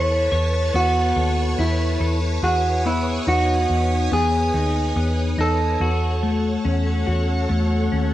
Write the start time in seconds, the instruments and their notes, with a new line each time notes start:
Already playing: picked electric bass E2, clean electric guitar E4 A4 C#5, string machine B4 C#5 A5 C#6
0.32 picked electric bass E2, clean electric guitar C#5
0.74 picked electric bass E2, clean electric guitar B3 F#4
1.16 picked electric bass D#2, clean electric guitar A4
1.58 picked electric bass E2, clean electric guitar E4
2.00 picked electric bass E2, clean electric guitar A4
2.43 picked electric bass E2, clean electric guitar F#4 G#4, string machine G#5 D#6
2.86 clean electric guitar B3 E4
3.27 picked electric bass E2, clean electric guitar D#4 F#4
3.70 picked electric bass E2
4.12 picked electric bass E2, clean electric guitar B3 G#4
4.54 picked electric bass D#2, clean electric guitar D#4
4.96 picked electric bass E2, clean electric guitar B3
5.38 picked electric bass E2, clean electric guitar D#4 A4
5.80 picked electric bass E2, clean electric guitar F#4, string machine A4 C#5 F#5 C#6
6.23 clean electric guitar A3
6.65 picked electric bass E2, clean electric guitar C#4
7.07 picked electric bass E2, clean electric guitar F#4
7.49 picked electric bass E2, clean electric guitar A3
7.92 picked electric bass D#2, clean electric guitar C#4